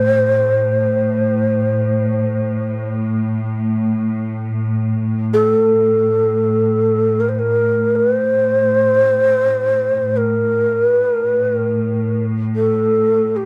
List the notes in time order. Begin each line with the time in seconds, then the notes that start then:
Already playing: A2 C5
5.33 A4
7.20 A#4
7.29 C5
7.35 A#4 C5
7.96 B4
8.16 C5
10.02 A2
10.17 A#4
10.91 B4
11.11 A#4
11.32 B4
11.52 A#4
12.55 A4
13.36 G4